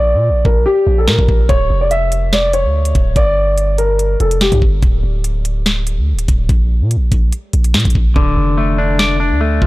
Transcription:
Already playing: A#1 D5
0.14 A#2
0.30 A#1
0.45 A#1 A#4, kick
0.66 G4
0.87 A#1
0.98 A4
1.07 A#2 A#4, snare
1.19 A#1, kick
1.28 A#1, kick
1.49 D1 C#5, kick, closed hi-hat
1.70 F1
1.81 D5
1.91 E5, closed hi-hat
2.12 closed hi-hat
2.33 D5, snare
2.53 C#5, closed hi-hat
2.64 D2
2.85 closed hi-hat
2.95 D1, kick, closed hi-hat
3.16 G1 D5, kick, closed hi-hat
3.58 closed hi-hat
3.78 A#4, closed hi-hat
3.99 closed hi-hat
4.20 F1 A4, closed hi-hat
4.31 closed hi-hat
4.41 G4, snare, closed hi-hat
4.52 G2, kick, closed hi-hat
4.62 G1, kick
4.83 D1, kick, closed hi-hat
5.03 D1
5.24 closed hi-hat
5.45 closed hi-hat
5.66 snare
5.87 closed hi-hat
5.98 D2
6.13 D1
6.19 closed hi-hat
6.28 D1, kick, closed hi-hat
6.49 A#1, kick, closed hi-hat
6.81 A#2
6.91 closed hi-hat
6.96 A#1
7.12 A#1, kick, closed hi-hat
7.33 closed hi-hat
7.53 A#1, closed hi-hat
7.64 closed hi-hat
7.74 A#2, snare, closed hi-hat
7.80 closed hi-hat
7.85 A#1, kick, closed hi-hat
7.90 closed hi-hat
7.95 A#1, kick
8.16 D1 D3, kick
8.37 F1
8.58 A3
8.78 D4
8.99 D5, snare
9.20 D4
9.31 D2
9.41 A3
9.62 D1 F3, kick

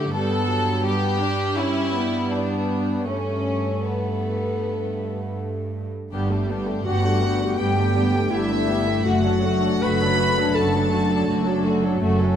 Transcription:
Already playing: A3 G4
0.13 G2 G3 B3 A4
0.48 F#3
0.84 G3 B3 G4
1.21 D4
1.57 C#4 E4
1.93 B3
2.30 D4
3.06 G2 A3 C#4
3.85 B3
6.12 G1 G2 G3 A3 B3 D4 G4
6.30 G3 A3 D4 G4
6.49 G3 B3 D4 G4
6.67 G3 A3 D4 G4
6.85 G1 G2 G3 B3 D4 F#4 G4 F#5
7.04 G3 A3 D4 G4
7.23 G3 B3 D4 G4
7.41 G3 A3 D4 G4
7.59 G1 G2 G3 B3 D4 G4 G5
7.78 G3 A3 D4 G4
7.96 G3 B3 D4 G4
8.15 G3 A3 D4 G4
8.31 G1 G2 G3 B3 D4 E4 G4 E5
8.51 G3 A3 D4 G4
8.69 G3 B3 D4 G4
8.87 G3 A3 D4 G4
9.05 F#1 F#2 D3 A3 D4 F#4 F#5
9.24 F#3 D4 A4
9.43 D3 A3 F#4
9.63 F#3 D4 A4
9.82 F#1 F#2 D3 A3 F#4 B4 B5
10.00 F#3 D4 A4
10.19 D3 A3 F#4
10.37 F#3 D4 A4
10.55 F#1 F#2 D3 A3 F#4 A4 A5
10.74 F#3 D4 A4
10.92 D3 A3 F#4
11.10 F#3 D4 A4
11.27 F#1 F#2 D3 A3 F#4
11.46 F#3 D4 A4
11.64 D3 A3 F#4
11.83 F#3 D4 A4
12.00 F#1 F#2 A3 C#4 F#4
12.19 F#3 C#4 A4

